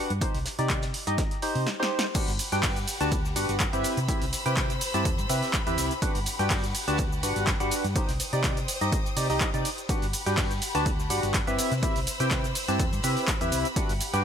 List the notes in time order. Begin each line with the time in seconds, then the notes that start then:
Already playing: D4 F#4 G4 B4 F#5
0.10 G2, closed hi-hat
0.21 D#4 G4 C5, kick, closed hi-hat, shaker
0.34 C2, snare, open hi-hat
0.46 snare, open hi-hat, shaker
0.59 C3 D#4 G4 D5, snare, closed hi-hat
0.70 kick, clap, closed hi-hat, shaker
0.83 snare, closed hi-hat, shaker
0.94 open hi-hat
1.07 G2 D#4 G4 D#5, closed hi-hat, shaker
1.18 kick, snare, closed hi-hat, shaker
1.31 snare, closed hi-hat
1.42 D#4 G4 C5, open hi-hat, shaker
1.55 C3, open hi-hat
1.67 snare
1.80 D#4 G4 C5, snare
1.99 snare
2.15 D4 F#4 G4 B4 F#5 B5, kick, closed hi-hat, crash, ride, cabasa, shaker
2.28 G1, snare, open hi-hat, cabasa
2.39 open hi-hat, ride, cabasa, shaker
2.52 G2 D4 F#4 G4 B4 G5, snare, closed hi-hat, cabasa
2.63 kick, snare, clap, closed hi-hat, open hi-hat, ride, cabasa
2.76 closed hi-hat, cabasa
2.88 open hi-hat, ride, cabasa, shaker
3.00 D2 D4 F#4 G4 B4 A5, snare, closed hi-hat, cabasa
3.12 kick, closed hi-hat, ride, cabasa, shaker
3.25 snare, cabasa
3.36 G1 D4 F#4 G4 B4 F#5, open hi-hat, ride, cabasa, shaker
3.49 G1, closed hi-hat, cabasa
3.60 kick, snare, clap, closed hi-hat, ride, cabasa, shaker
3.73 G1 C4 E4 G4 B4 E5, closed hi-hat, cabasa
3.84 C5 E6, snare, open hi-hat, ride, cabasa, shaker
3.97 C3, closed hi-hat, cabasa
4.08 C4 E4 G4 B4 E5, kick, closed hi-hat, ride, cabasa, shaker
4.21 C2, snare, open hi-hat, cabasa
4.33 open hi-hat, ride, cabasa, shaker
4.46 C3 C4 E4 G4 B4 G5, closed hi-hat, cabasa
4.57 kick, snare, clap, closed hi-hat, ride, cabasa, shaker
4.70 snare, closed hi-hat, cabasa
4.81 open hi-hat, ride, cabasa, shaker
4.94 G2 C4 E4 G4 B4 A5, snare, closed hi-hat, cabasa
5.05 E2, kick, closed hi-hat, ride, cabasa, shaker
5.18 G2, closed hi-hat, cabasa
5.29 C3 C4 E4 G4 B4 E5, open hi-hat, ride, cabasa, shaker
5.43 snare, open hi-hat, cabasa
5.54 kick, snare, clap, closed hi-hat, ride, cabasa, shaker
5.67 E2 C4 E4 G4 B4 E5, closed hi-hat, cabasa
5.78 C2, snare, open hi-hat, ride, cabasa, shaker
5.91 closed hi-hat, cabasa
6.02 D4 F#4 G4 B4 F#5, kick, closed hi-hat, ride, cabasa, shaker
6.15 G1, snare, open hi-hat, cabasa
6.26 open hi-hat, ride, cabasa, shaker
6.39 G2 D4 F#4 G4 B4 G5, snare, closed hi-hat, cabasa
6.50 kick, snare, clap, closed hi-hat, open hi-hat, ride, cabasa
6.64 closed hi-hat, cabasa
6.75 open hi-hat, ride, cabasa, shaker
6.88 D2 D4 F#4 G4 B4 A5, snare, closed hi-hat, cabasa
6.98 kick, closed hi-hat, ride, cabasa, shaker
7.12 cabasa
7.23 G1 D4 F#4 G4 B4 F#5, open hi-hat, ride, cabasa, shaker
7.36 G1, closed hi-hat, cabasa
7.47 kick, snare, clap, closed hi-hat, ride, cabasa, shaker
7.60 G1 D4 F#4 G4 B4 F#5, closed hi-hat, cabasa
7.71 snare, open hi-hat, ride, cabasa, shaker
7.84 G2, snare, closed hi-hat, cabasa
7.95 D#4 G4 C5 G5 D#6, kick, closed hi-hat, ride, cabasa, shaker
8.09 C2, snare, open hi-hat, cabasa
8.20 open hi-hat, ride, cabasa, shaker
8.33 C3 D#4 G4 D5, closed hi-hat, cabasa
8.44 kick, snare, clap, closed hi-hat, ride, cabasa, shaker
8.57 snare, closed hi-hat, cabasa
8.68 open hi-hat, ride, cabasa, shaker
8.81 G2 D#4 G4 D#5, snare, closed hi-hat, cabasa
8.92 kick, closed hi-hat, ride, cabasa, shaker
9.06 closed hi-hat, cabasa
9.17 C3 D#4 G4 D5, open hi-hat, ride, cabasa, shaker
9.30 C2 D#4 G4 D#5, snare, open hi-hat, cabasa
9.40 kick, snare, clap, closed hi-hat, ride, cabasa, shaker
9.54 C3 D#4 G4 D5, closed hi-hat, cabasa
9.65 snare, open hi-hat, ride, cabasa, shaker
9.78 closed hi-hat, cabasa
9.89 D4 F#4 G4 B4 F#5 B5, kick, closed hi-hat, ride, cabasa, shaker
10.02 G1, snare, open hi-hat, cabasa
10.13 open hi-hat, ride, cabasa, shaker
10.26 G2 D4 F#4 G4 B4 G5, snare, closed hi-hat, cabasa
10.37 kick, snare, clap, closed hi-hat, open hi-hat, ride, cabasa
10.51 closed hi-hat, cabasa
10.62 open hi-hat, ride, cabasa, shaker
10.75 D2 D4 F#4 G4 B4 A5, closed hi-hat, cabasa
10.86 kick, closed hi-hat, ride, cabasa, shaker
10.99 snare, cabasa
11.10 G1 D4 F#4 G4 B4 F#5, open hi-hat, ride, cabasa, shaker
11.23 G1, closed hi-hat, cabasa
11.34 kick, snare, clap, closed hi-hat, ride, cabasa, shaker
11.47 G1 C4 E4 G4 B4 E5, closed hi-hat, cabasa
11.58 C5 B5 E6, snare, open hi-hat, ride, cabasa, shaker
11.72 C3, snare, closed hi-hat, cabasa
11.83 C4 E4 G4 B4 E5, kick, closed hi-hat, ride, cabasa, shaker
11.96 C2, snare, open hi-hat, cabasa
12.07 open hi-hat, ride, cabasa, shaker
12.20 C3 C4 E4 G4 B4 G5, closed hi-hat, cabasa
12.31 kick, snare, clap, closed hi-hat, ride, cabasa, shaker
12.44 snare, closed hi-hat, cabasa
12.55 open hi-hat, ride, cabasa, shaker
12.68 G2 C4 E4 G4 B4 A5, snare, closed hi-hat, cabasa
12.79 E2, kick, closed hi-hat, ride, cabasa, shaker
12.92 G2, closed hi-hat, cabasa
13.03 C3 C4 E4 G4 B4 E5, open hi-hat, ride, cabasa, shaker
13.17 snare, open hi-hat, cabasa
13.28 kick, snare, clap, closed hi-hat, ride, cabasa, shaker
13.41 E2 C4 E4 G4 B4 E5, closed hi-hat, cabasa
13.52 C2, snare, open hi-hat, ride, cabasa, shaker
13.65 closed hi-hat, cabasa
13.76 D4 F#4 G4 B4 F#5, kick, closed hi-hat, ride, cabasa, shaker
13.89 G1, snare, open hi-hat, cabasa
14.01 open hi-hat, ride, cabasa, shaker
14.13 G2 D4 F#4 G4 B4 G5, snare, closed hi-hat, cabasa